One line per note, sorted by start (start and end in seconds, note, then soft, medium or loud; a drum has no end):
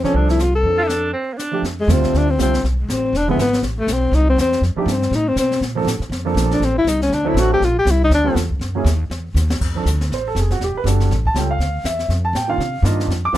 0.03 0.13 C3 medium
0.03 0.37 F3 medium
0.03 0.37 C4 medium
0.03 0.17 C#4 medium
0.03 0.38 D4 medium
0.03 0.38 A4 medium
0.03 snare soft
0.14 0.61 C2 medium
0.14 0.29 D4 medium
0.14 brush sweep soft
0.29 0.42 E4 medium
0.29 snare soft
0.39 0.54 F4 medium
0.39 snare soft
0.39 hi-hat pedal medium
0.55 1.11 A4 medium
0.63 1.11 F2 medium
0.63 0.77 F3 soft
0.63 0.78 C4 soft
0.63 0.78 D4 soft
0.63 0.78 A4 medium
0.63 brush sweep soft
0.78 0.84 F4 medium
0.83 0.89 E4 medium
0.88 1.13 D4 medium
0.88 snare soft
0.88 hi-hat pedal soft
1.13 1.35 C4 medium
1.13 brush sweep soft
1.33 1.39 A#3 medium
1.38 1.63 D4 medium
1.38 snare soft
1.38 hi-hat pedal medium
1.51 1.62 F3 medium
1.51 1.62 A3 soft
1.51 1.63 D4 medium
1.51 1.63 G4 medium
1.62 1.87 F2 medium
1.62 brush sweep soft
1.62 snare soft
1.80 1.93 G#3 medium
1.88 1.95 E2 medium
1.88 2.25 D3 medium
1.88 2.25 G3 medium
1.88 2.25 A3 medium
1.88 2.26 C4 medium
1.88 2.26 F4 medium
1.88 snare medium
1.88 hi-hat pedal medium
1.92 2.04 D2 medium
1.92 2.19 C4 medium
2.04 2.13 C2 medium
2.04 snare soft
2.13 2.38 D2 medium
2.13 2.32 D4 medium
2.13 brush sweep medium
2.13 snare soft
2.31 2.40 C4 medium
2.38 2.63 C2 medium
2.38 2.51 D3 medium
2.38 2.52 G3 soft
2.38 2.52 A3 medium
2.38 2.52 C4 soft
2.38 2.63 C4 medium
2.38 2.52 F4 medium
2.38 snare medium
2.38 hi-hat pedal medium
2.54 snare soft
2.63 2.87 B1 medium
2.63 brush sweep soft
2.63 snare soft
2.81 2.93 G#3 soft
2.89 3.12 A1 medium
2.89 3.18 C4 medium
2.89 snare medium
2.89 hi-hat pedal medium
3.13 3.37 E1 medium
3.13 3.29 D4 medium
3.13 brush sweep soft
3.13 snare soft
3.28 3.37 D3 medium
3.28 3.37 F3 medium
3.28 3.38 G#3 medium
3.28 3.38 B3 medium
3.28 3.39 B3 medium
3.28 3.38 E4 medium
3.37 3.61 G#1 medium
3.37 3.63 B3 medium
3.37 snare medium
3.37 hi-hat pedal medium
3.47 snare soft
3.53 snare soft
3.55 snare soft
3.62 3.86 A1 medium
3.62 brush sweep soft
3.62 snare soft
3.80 3.94 A3 medium
3.87 4.11 B1 medium
3.87 snare medium
3.87 hi-hat pedal medium
3.92 4.16 C4 medium
4.11 4.36 C2 medium
4.11 4.28 D#4 medium
4.11 brush sweep soft
4.11 snare soft
4.29 4.38 C4 medium
4.37 4.61 E2 medium
4.37 snare medium
4.37 hi-hat pedal medium
4.41 4.62 C4 medium
4.53 snare soft
4.61 4.75 F2 medium
4.61 brush sweep soft
4.61 snare soft
4.76 4.86 F3 medium
4.76 4.92 G#3 soft
4.76 4.86 A3 medium
4.76 4.86 D4 medium
4.76 4.87 D#4 medium
4.76 4.87 G4 medium
4.76 muted upright bass stroke soft
4.86 5.11 G2 loud
4.86 snare medium
4.86 hi-hat pedal medium
4.90 5.16 C4 medium
5.02 snare soft
5.11 5.35 A2 medium
5.11 5.30 D#4 medium
5.11 brush sweep medium
5.11 snare soft
5.28 5.38 C4 medium
5.36 5.60 B2 medium
5.36 5.61 C4 medium
5.36 snare medium
5.36 hi-hat pedal medium
5.52 snare soft
5.61 5.84 A#2 medium
5.61 brush sweep soft
5.61 snare soft
5.75 5.85 F3 medium
5.75 5.86 A#3 medium
5.75 5.86 C4 medium
5.75 5.86 D4 medium
5.75 5.86 A4 medium
5.85 5.99 A2 loud
5.85 snare medium
5.85 hi-hat pedal medium
5.99 muted upright bass stroke soft
5.99 snare soft
6.10 6.34 F2 medium
6.10 brush sweep soft
6.10 snare soft
6.25 6.59 F3 medium
6.25 6.59 A#3 medium
6.25 6.59 C4 medium
6.25 6.59 D4 medium
6.25 6.60 A4 medium
6.35 6.59 A#1 medium
6.35 snare medium
6.35 hi-hat pedal medium
6.51 6.65 D4 medium
6.51 snare soft
6.60 6.84 A1 medium
6.60 brush sweep soft
6.60 snare soft
6.64 6.77 C4 medium
6.78 6.90 E4 loud
6.85 7.09 C2 loud
6.85 snare medium
6.85 hi-hat pedal medium
6.89 7.01 D#4 medium
7.02 7.15 C#4 medium
7.02 snare soft
7.10 7.34 D2 medium
7.10 7.30 D4 medium
7.10 brush sweep soft
7.10 snare soft
7.25 7.58 F#3 medium
7.25 7.58 A3 medium
7.25 7.59 C4 medium
7.25 7.59 D4 medium
7.25 7.41 E4 medium
7.25 7.59 A4 medium
7.34 7.59 A1 medium
7.34 snare medium
7.34 hi-hat pedal medium
7.39 7.52 F#4 medium
7.53 7.66 G4 loud
7.60 7.85 A#1 medium
7.60 brush sweep soft
7.60 snare soft
7.65 7.77 F4 medium
7.79 7.92 G4 medium
7.85 8.09 C2 loud
7.85 snare medium
7.85 hi-hat pedal medium
7.90 8.03 E4 medium
8.04 8.12 D#4 loud
8.10 8.34 D2 medium
8.10 brush sweep soft
8.10 snare soft
8.14 8.36 D4 medium
8.24 8.34 G3 medium
8.24 8.35 A#3 medium
8.24 8.35 C4 medium
8.24 8.35 F4 medium
8.24 8.35 A4 medium
8.35 8.59 E2 medium
8.35 snare medium
8.35 hi-hat pedal medium
8.50 kick soft
8.59 8.84 F#2 medium
8.59 brush sweep soft
8.59 snare soft
8.75 8.85 F#3 medium
8.75 8.85 A#3 medium
8.75 8.85 C#4 medium
8.75 8.85 E4 medium
8.75 8.86 G#4 medium
8.85 9.09 D#2 loud
8.85 snare medium
8.85 hi-hat pedal medium
9.10 9.34 E2 medium
9.10 brush sweep soft
9.10 snare soft
9.34 9.59 D#2 medium
9.34 snare soft
9.34 hi-hat pedal medium
9.50 snare medium
9.60 9.85 F2 medium
9.60 brush sweep soft
9.60 kick medium
9.60 snare soft
9.60 crash medium
9.75 9.85 F3 medium
9.75 9.85 C4 medium
9.75 9.85 D4 soft
9.75 9.86 A4 medium
9.85 10.10 D2 medium
9.85 snare medium
9.85 hi-hat pedal medium
10.01 snare soft
10.10 10.34 A1 medium
10.10 10.26 C5 medium
10.10 brush sweep soft
10.10 snare soft
10.28 10.37 A4 medium
10.35 10.59 F1 medium
10.35 snare medium
10.35 hi-hat pedal medium
10.39 10.51 G#4 medium
10.51 10.61 F#4 medium
10.51 snare soft
10.60 10.73 E1 medium
10.60 brush sweep soft
10.60 snare soft
10.64 10.76 G4 medium
10.75 10.83 B4 medium
10.75 muted upright bass stroke soft
10.84 11.09 F#1 medium
10.84 11.10 G3 medium
10.84 11.10 D4 medium
10.84 11.11 F#4 medium
10.84 11.11 A4 medium
10.84 snare medium
10.84 hi-hat pedal medium
11.00 snare soft
11.10 11.34 A1 medium
11.10 brush sweep soft
11.10 snare soft
11.25 11.36 A5 medium
11.25 kick medium
11.34 11.58 C#2 medium
11.34 11.48 G3 medium
11.34 11.48 C#4 soft
11.34 11.49 F4 soft
11.34 11.49 A4 medium
11.34 11.50 G5 medium
11.34 snare medium
11.34 hi-hat pedal medium
11.51 11.83 F5 medium
11.58 11.83 D2 medium
11.58 brush sweep soft
11.58 snare soft
11.84 12.08 E2 medium
11.84 12.09 E5 medium
11.84 snare medium
11.84 hi-hat pedal medium
11.99 snare soft
12.08 12.33 F2 medium
12.08 brush sweep medium
12.08 snare soft
12.25 12.35 A5 medium
12.33 12.57 A2 medium
12.33 12.49 G5 medium
12.33 snare medium
12.33 hi-hat pedal soft
12.48 12.58 D#3 medium
12.48 12.58 A#3 medium
12.48 12.58 D4 medium
12.48 12.59 F4 medium
12.48 12.82 F5 medium
12.58 12.82 C3 medium
12.58 brush sweep soft
12.58 snare soft
12.82 13.07 G2 medium
12.82 13.09 D#3 medium
12.82 13.09 A#3 medium
12.82 13.09 D4 medium
12.82 13.10 F4 medium
12.82 snare medium
12.82 hi-hat pedal medium
12.87 13.09 D#5 medium
13.00 snare soft
13.08 13.33 F2 medium
13.08 brush sweep soft
13.08 snare soft
13.25 13.35 D6 medium
13.33 13.38 D#2 medium
13.33 13.38 D#3 medium
13.33 13.38 A3 medium
13.33 13.38 C4 medium
13.33 13.38 F4 medium
13.33 snare medium
13.33 hi-hat pedal soft